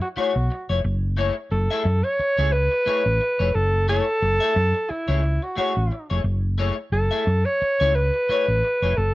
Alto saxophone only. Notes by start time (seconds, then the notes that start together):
0.02 F#4
0.17 F#4
1.52 A4
2.04 C#5
2.52 B4
3.54 A4
3.89 A4
4.90 E4
5.43 F#4
5.58 F#4
6.92 A4
7.45 C#5
7.95 B4
8.97 A4